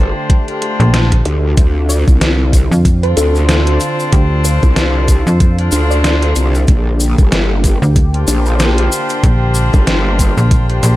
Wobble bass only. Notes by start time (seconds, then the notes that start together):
Already playing: G1
1.26 D2
1.57 D2
2.08 C2
3.17 D2
4.63 C2
5.72 D2
6.36 C2
6.68 A#1
7.18 G1
8.28 A#1
9.74 G1